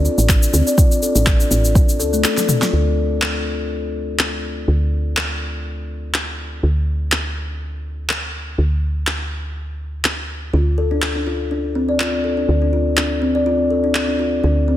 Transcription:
0.05 0.17 F4 medium
0.05 cabasa soft
0.18 0.47 A1 loud
0.18 cabasa soft
0.29 kick loud
0.29 clap loud
0.29 cabasa medium
0.43 cabasa medium
0.53 0.62 D2 loud
0.53 0.61 C4 medium
0.53 cabasa medium
0.67 0.77 D5 medium
0.67 cabasa soft
0.78 0.90 F4 loud
0.78 kick loud
0.78 cabasa medium
0.92 cabasa medium
1.02 1.14 A4 medium
1.02 cabasa medium
1.15 1.44 A1 loud
1.15 1.26 D4 medium
1.15 cabasa medium
1.26 kick loud
1.26 clap loud
1.26 cabasa medium
1.40 1.50 D4 medium
1.40 cabasa medium
1.51 2.01 A1 loud
1.51 1.63 F4 medium
1.51 cabasa medium
1.65 cabasa soft
1.75 1.82 D4 medium
1.75 kick loud
1.75 cabasa medium
1.89 cabasa medium
2.00 2.24 D2 medium
2.00 2.12 A4 medium
2.00 cabasa medium
2.13 2.19 A3 medium
2.13 cabasa soft
2.24 2.37 A4 loud
2.24 clap loud
2.24 cabasa medium
2.37 snare medium
2.37 cabasa medium
2.49 2.60 A4 medium
2.49 mid tom medium
2.49 cabasa medium
2.62 2.72 F4 medium
2.62 snare medium
2.62 cabasa soft
2.73 4.66 D2 medium
3.22 clap loud
4.19 clap loud
4.68 6.61 D2 medium
5.17 clap loud
6.14 clap loud
6.63 8.56 D2 medium
7.12 clap loud
8.09 clap loud
8.58 10.51 D2 medium
9.07 clap loud
10.05 clap loud
10.53 12.46 D2 medium
10.53 10.65 F4 medium
10.78 10.90 A4 medium
10.91 11.01 D4 medium
11.02 clap loud
11.15 11.25 D4 medium
11.27 11.39 F4 medium
11.51 11.58 D4 medium
11.75 11.83 C4 medium
11.89 11.99 D5 medium
12.00 12.12 F4 loud
12.00 clap loud
12.24 12.36 A4 medium
12.37 12.47 D4 medium
12.49 14.42 D2 medium
12.62 12.72 D4 medium
12.73 12.85 F4 medium
12.97 13.05 D4 medium
12.97 clap loud
13.22 13.29 C4 medium
13.35 13.45 D5 medium
13.46 13.58 F4 medium
13.71 13.82 A4 medium
13.84 13.94 D4 medium
13.95 clap medium
14.08 14.18 D4 medium
14.19 14.31 F4 medium
14.44 14.77 D2 medium
14.44 14.51 D4 medium
14.68 14.75 C4 medium

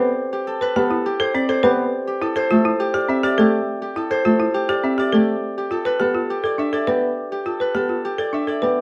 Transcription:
0.00 0.31 G4 medium
0.00 0.46 A4 medium
0.00 0.61 B4 medium
0.00 1.19 C5 medium
0.00 1.33 D5 medium
0.00 1.75 E5 medium
0.33 1.05 G4 medium
0.47 0.76 A4 medium
0.61 0.80 B4 medium
0.61 1.95 B4 medium
0.76 0.95 B3 medium
0.76 0.95 G4 medium
0.76 2.21 A4 medium
0.91 1.10 E4 medium
1.06 1.63 G4 medium
1.20 1.39 A4 medium
1.20 1.48 C5 medium
1.34 1.53 C4 medium
1.34 2.93 D5 medium
1.49 1.68 A4 medium
1.49 2.35 C5 medium
1.63 1.82 B3 medium
1.63 1.95 G4 medium
1.63 1.82 B4 medium
2.07 2.79 G4 medium
2.22 2.41 E4 medium
2.22 2.50 A4 medium
2.36 2.55 A4 medium
2.36 4.09 C5 medium
2.51 2.70 A3 medium
2.51 2.70 F4 medium
2.51 3.96 A4 medium
2.65 2.84 E4 medium
2.80 3.38 G4 medium
2.94 3.13 G4 medium
2.94 3.23 D5 medium
3.09 3.28 C4 medium
3.09 4.83 E5 medium
3.23 3.42 G4 medium
3.23 4.68 D5 medium
3.38 3.57 A3 medium
3.38 3.81 G4 medium
3.38 3.57 A4 medium
3.82 4.53 G4 medium
3.96 4.15 E4 medium
3.96 4.24 A4 medium
4.11 4.30 A4 medium
4.11 5.44 C5 medium
4.25 4.45 A3 medium
4.25 4.44 F4 medium
4.25 5.70 A4 medium
4.40 4.59 E4 medium
4.54 5.13 G4 medium
4.69 4.88 G4 medium
4.69 4.98 D5 medium
4.84 5.03 C4 medium
4.84 5.45 E5 medium
4.98 5.17 G4 medium
4.98 6.44 D5 medium
5.12 5.32 A3 medium
5.12 5.56 G4 medium
5.12 5.32 A4 medium
5.58 6.29 G4 medium
5.71 5.90 F4 medium
5.71 5.99 A4 medium
5.85 6.05 B4 medium
5.85 7.60 B4 medium
6.00 6.19 B3 medium
6.00 6.19 G4 medium
6.00 7.45 A4 medium
6.14 6.34 F4 medium
6.30 6.87 G4 medium
6.44 6.63 A4 medium
6.44 6.73 D5 medium
6.58 6.77 D4 medium
6.58 8.33 E5 medium
6.73 6.92 A4 medium
6.73 8.18 D5 medium
6.87 7.07 B3 medium
6.87 7.31 G4 medium
6.87 7.06 B4 medium
7.32 8.04 G4 medium
7.46 7.65 F4 soft
7.46 7.75 A4 medium
7.60 7.79 B4 medium
7.60 8.81 B4 medium
7.75 7.94 B3 medium
7.75 7.94 G4 medium
7.75 8.81 A4 medium
7.89 8.08 F4 soft
8.05 8.62 G4 medium
8.18 8.38 A4 medium
8.18 8.47 D5 medium
8.33 8.52 D4 soft
8.33 8.81 E5 soft
8.47 8.67 A4 medium
8.47 8.81 D5 medium
8.62 8.81 B3 medium
8.62 8.81 G4 medium
8.62 8.81 B4 medium

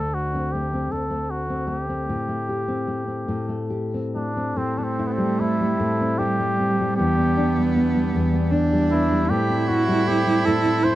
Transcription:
0.00 0.90 D2 medium
0.00 0.54 A3 soft
0.00 0.34 D4 soft
0.00 0.16 A4 medium
0.14 0.54 F#4 medium
0.35 0.73 C4 soft
0.52 1.10 A3 soft
0.52 0.93 G4 medium
0.73 1.49 C4 soft
0.92 2.15 D2 medium
0.92 1.32 A4 medium
1.10 1.67 A3 soft
1.30 1.69 F#4 medium
1.50 1.89 C4 soft
1.67 2.28 A3 soft
1.67 1.80 F#4 medium
1.80 3.71 G4 medium
1.89 2.68 C4 soft
2.09 3.27 A2 medium
2.28 2.87 A3 soft
2.49 3.70 G4 soft
2.68 3.07 C4 soft
2.87 3.48 A3 soft
3.08 3.94 C4 soft
3.28 4.55 A2 medium
3.49 4.15 A3 soft
3.70 4.99 G4 soft
3.94 4.36 C4 soft
4.15 4.77 A3 soft
4.15 4.59 D4 medium
4.37 4.78 C4 soft
4.55 5.78 A2 medium
4.55 6.95 G3 medium
4.55 6.15 A3 medium
4.55 6.94 C4 medium
4.55 4.80 C4 medium
4.55 6.94 A4 medium
4.78 5.39 C4 soft
4.78 4.85 D4 soft
4.84 5.08 C4 medium
4.99 6.19 E4 medium
5.07 5.14 B3 soft
5.13 5.41 C4 medium
5.18 5.60 G3 soft
5.40 6.00 C4 soft
5.40 6.20 E4 medium
5.61 6.39 G3 soft
5.79 6.97 A2 medium
6.01 6.58 C4 soft
6.18 6.98 G3 medium
6.18 7.37 E4 medium
6.18 6.95 G4 medium
6.40 6.80 G3 medium
6.60 7.05 C4 medium
6.80 7.58 G3 soft
6.96 8.13 E2 medium
6.96 9.26 E3 medium
6.96 8.52 B3 medium
6.96 9.26 D4 medium
6.96 7.70 G4 medium
6.96 9.26 G4 medium
7.18 7.75 B3 medium
7.37 8.51 D4 medium
7.58 7.95 G3 medium
7.76 8.32 B3 medium
7.95 8.72 G3 medium
8.15 9.29 E2 medium
8.34 8.91 B3 medium
8.51 9.29 D4 medium
8.51 9.36 D4 medium
8.72 9.11 G3 medium
8.92 9.37 B3 medium
8.92 9.31 E4 medium
9.11 9.88 G3 medium
9.28 10.45 A2 medium
9.28 10.95 G3 medium
9.28 10.95 C4 medium
9.28 10.95 E4 loud
9.28 9.58 G4 loud
9.28 10.95 A4 medium
9.50 10.07 C4 medium
9.58 9.69 G4 medium
9.68 10.84 E4 medium
9.68 10.09 F#4 medium
9.88 10.25 G3 medium
10.07 10.64 C4 medium
10.07 10.47 G4 loud
10.26 10.95 G3 medium
10.46 10.95 A2 medium
10.46 10.85 A4 medium
10.65 10.95 C4 medium
10.84 10.95 E4 medium
10.84 10.95 C5 loud

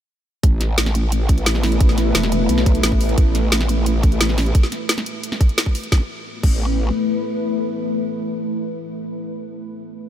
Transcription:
0.43 0.76 A1 loud
0.43 4.51 A3 medium
0.43 4.51 E4 medium
0.43 4.51 B4 medium
0.43 kick loud
0.43 closed hi-hat loud
0.61 snare soft
0.61 closed hi-hat medium
0.78 2.14 A1 loud
0.78 snare loud
0.78 closed hi-hat loud
0.86 snare medium
0.86 closed hi-hat soft
0.95 closed hi-hat medium
1.12 closed hi-hat loud
1.29 kick loud
1.29 closed hi-hat medium
1.38 closed hi-hat soft
1.46 snare loud
1.46 closed hi-hat loud
1.55 snare soft
1.63 snare medium
1.63 open hi-hat medium
1.72 closed hi-hat soft
1.81 kick loud
1.81 closed hi-hat medium
1.89 snare soft
1.98 snare soft
1.98 closed hi-hat medium
2.15 2.48 E1 loud
2.15 snare loud
2.15 closed hi-hat loud
2.23 snare medium
2.23 closed hi-hat soft
2.32 closed hi-hat medium
2.49 2.82 B1 loud
2.49 closed hi-hat medium
2.58 snare medium
2.66 kick loud
2.66 closed hi-hat medium
2.75 closed hi-hat soft
2.83 3.16 A1 loud
2.83 snare loud
2.83 closed hi-hat loud
2.92 kick medium
3.01 open hi-hat medium
3.09 closed hi-hat soft
3.18 3.51 A1 loud
3.18 kick loud
3.18 closed hi-hat medium
3.35 snare soft
3.35 closed hi-hat medium
3.52 4.54 A1 loud
3.52 snare loud
3.52 closed hi-hat medium
3.61 snare medium
3.61 closed hi-hat soft
3.69 closed hi-hat medium
3.86 closed hi-hat loud
4.03 kick loud
4.03 closed hi-hat medium
4.12 closed hi-hat soft
4.21 snare loud
4.21 closed hi-hat medium
4.29 snare soft
4.38 snare medium
4.38 open hi-hat medium
4.46 closed hi-hat soft
4.55 kick loud
4.55 closed hi-hat medium
4.63 snare soft
4.72 snare soft
4.72 closed hi-hat medium
4.89 snare loud
4.89 closed hi-hat medium
4.98 snare medium
4.98 closed hi-hat soft
5.06 closed hi-hat medium
5.23 closed hi-hat medium
5.32 snare medium
5.41 kick loud
5.41 closed hi-hat medium
5.49 closed hi-hat soft
5.58 snare loud
5.58 closed hi-hat medium
5.66 kick medium
5.75 open hi-hat medium
5.84 closed hi-hat soft
5.92 6.02 A1 loud
5.92 9.42 A3 medium
5.92 9.42 E4 medium
5.92 9.42 B4 medium
5.92 kick loud
5.92 snare medium
6.43 6.91 A1 loud
6.43 kick loud
6.43 crash medium

